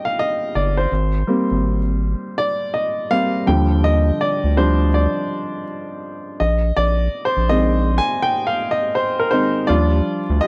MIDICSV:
0, 0, Header, 1, 3, 480
1, 0, Start_track
1, 0, Key_signature, -3, "major"
1, 0, Tempo, 731707
1, 591, Time_signature, 4, 2, 24, 8
1, 6870, End_track
2, 0, Start_track
2, 0, Title_t, "Grand piano"
2, 0, Program_c, 0, 0
2, 0, Control_c, 0, 64, 127
2, 0, Note_on_c, 0, 53, 49
2, 0, Note_on_c, 0, 55, 45
2, 0, Note_on_c, 0, 62, 54
2, 0, Note_on_c, 0, 75, 84
2, 0, Note_on_c, 0, 79, 99
2, 33, Note_on_c, 0, 77, 84
2, 111, Note_off_c, 0, 77, 0
2, 127, Note_off_c, 0, 75, 0
2, 127, Note_on_c, 0, 75, 87
2, 363, Note_on_c, 0, 74, 77
2, 366, Note_off_c, 0, 75, 0
2, 508, Note_on_c, 0, 72, 74
2, 512, Note_off_c, 0, 74, 0
2, 599, Control_c, 0, 64, 0
2, 600, Note_off_c, 0, 53, 0
2, 601, Note_off_c, 0, 55, 0
2, 603, Note_off_c, 0, 62, 0
2, 604, Note_off_c, 0, 79, 0
2, 718, Control_c, 0, 64, 127
2, 835, Note_on_c, 0, 55, 54
2, 839, Note_on_c, 0, 58, 50
2, 843, Note_on_c, 0, 60, 58
2, 958, Note_off_c, 0, 72, 0
2, 1175, Note_off_c, 0, 55, 0
2, 1177, Note_off_c, 0, 58, 0
2, 1180, Note_off_c, 0, 60, 0
2, 1561, Note_on_c, 0, 74, 95
2, 1614, Note_off_c, 0, 74, 0
2, 1796, Note_on_c, 0, 75, 84
2, 2037, Note_on_c, 0, 55, 45
2, 2039, Note_on_c, 0, 77, 95
2, 2040, Note_on_c, 0, 58, 40
2, 2041, Note_off_c, 0, 75, 0
2, 2041, Note_on_c, 0, 60, 52
2, 2250, Note_off_c, 0, 55, 0
2, 2252, Note_off_c, 0, 58, 0
2, 2253, Note_off_c, 0, 60, 0
2, 2258, Note_off_c, 0, 77, 0
2, 2273, Note_on_c, 0, 53, 55
2, 2277, Note_on_c, 0, 55, 47
2, 2278, Note_on_c, 0, 79, 91
2, 2281, Control_c, 0, 64, 0
2, 2283, Note_on_c, 0, 50, 62
2, 2385, Control_c, 0, 64, 127
2, 2498, Note_off_c, 0, 79, 0
2, 2520, Note_on_c, 0, 75, 98
2, 2761, Note_on_c, 0, 74, 87
2, 2762, Note_off_c, 0, 75, 0
2, 2986, Note_off_c, 0, 53, 0
2, 2988, Note_off_c, 0, 55, 0
2, 2996, Note_on_c, 0, 53, 52
2, 2998, Note_on_c, 0, 55, 44
2, 2998, Note_on_c, 0, 62, 57
2, 3000, Note_on_c, 0, 72, 85
2, 3003, Note_off_c, 0, 74, 0
2, 3210, Note_off_c, 0, 53, 0
2, 3211, Note_off_c, 0, 55, 0
2, 3211, Note_off_c, 0, 62, 0
2, 3242, Note_on_c, 0, 74, 79
2, 3243, Note_off_c, 0, 72, 0
2, 3690, Note_off_c, 0, 74, 0
2, 4171, Note_off_c, 0, 50, 0
2, 4198, Control_c, 0, 64, 0
2, 4198, Note_on_c, 0, 75, 81
2, 4299, Control_c, 0, 64, 127
2, 4418, Note_off_c, 0, 75, 0
2, 4438, Note_on_c, 0, 74, 93
2, 4732, Note_off_c, 0, 74, 0
2, 4757, Note_on_c, 0, 72, 83
2, 4915, Note_on_c, 0, 51, 54
2, 4916, Note_on_c, 0, 75, 94
2, 4919, Note_off_c, 0, 72, 0
2, 4919, Note_on_c, 0, 56, 53
2, 4923, Note_on_c, 0, 60, 60
2, 5234, Note_on_c, 0, 80, 105
2, 5243, Note_off_c, 0, 75, 0
2, 5381, Note_off_c, 0, 80, 0
2, 5395, Note_on_c, 0, 79, 103
2, 5431, Note_off_c, 0, 79, 0
2, 5555, Note_on_c, 0, 77, 86
2, 5607, Note_off_c, 0, 51, 0
2, 5609, Note_off_c, 0, 56, 0
2, 5611, Note_off_c, 0, 60, 0
2, 5714, Note_on_c, 0, 75, 89
2, 5718, Note_off_c, 0, 77, 0
2, 5872, Note_on_c, 0, 72, 82
2, 5878, Note_off_c, 0, 75, 0
2, 6032, Note_on_c, 0, 70, 75
2, 6036, Note_off_c, 0, 72, 0
2, 6106, Note_on_c, 0, 72, 86
2, 6112, Note_on_c, 0, 51, 48
2, 6115, Note_on_c, 0, 56, 42
2, 6118, Note_on_c, 0, 60, 54
2, 6121, Note_on_c, 0, 63, 69
2, 6328, Note_off_c, 0, 51, 0
2, 6329, Note_off_c, 0, 56, 0
2, 6329, Note_off_c, 0, 70, 0
2, 6331, Note_off_c, 0, 60, 0
2, 6339, Note_off_c, 0, 63, 0
2, 6344, Note_on_c, 0, 74, 90
2, 6351, Note_on_c, 0, 53, 55
2, 6356, Note_off_c, 0, 72, 0
2, 6356, Note_on_c, 0, 55, 49
2, 6358, Note_on_c, 0, 62, 57
2, 6358, Note_on_c, 0, 65, 76
2, 6360, Control_c, 0, 64, 0
2, 6471, Control_c, 0, 64, 127
2, 6693, Note_off_c, 0, 53, 0
2, 6696, Note_off_c, 0, 55, 0
2, 6697, Note_off_c, 0, 62, 0
2, 6809, Note_off_c, 0, 65, 0
2, 6828, Note_on_c, 0, 75, 96
2, 6842, Note_off_c, 0, 74, 0
2, 6843, Note_on_c, 0, 67, 72
2, 6870, Note_off_c, 0, 67, 0
2, 6870, Note_off_c, 0, 75, 0
2, 6870, End_track
3, 0, Start_track
3, 0, Title_t, "Analog synth bass"
3, 0, Program_c, 1, 38
3, 366, Note_on_c, 1, 31, 87
3, 569, Note_off_c, 1, 31, 0
3, 606, Note_on_c, 1, 32, 105
3, 810, Note_off_c, 1, 32, 0
3, 995, Note_on_c, 1, 32, 84
3, 1409, Note_off_c, 1, 32, 0
3, 2286, Note_on_c, 1, 39, 96
3, 2700, Note_off_c, 1, 39, 0
3, 2913, Note_on_c, 1, 38, 91
3, 3328, Note_off_c, 1, 38, 0
3, 4204, Note_on_c, 1, 34, 103
3, 4408, Note_off_c, 1, 34, 0
3, 4444, Note_on_c, 1, 34, 108
3, 4648, Note_off_c, 1, 34, 0
3, 4834, Note_on_c, 1, 34, 85
3, 5249, Note_off_c, 1, 34, 0
3, 6364, Note_on_c, 1, 39, 99
3, 6568, Note_off_c, 1, 39, 0
3, 6755, Note_on_c, 1, 38, 75
3, 6828, Note_off_c, 1, 38, 0
3, 6870, End_track
0, 0, End_of_file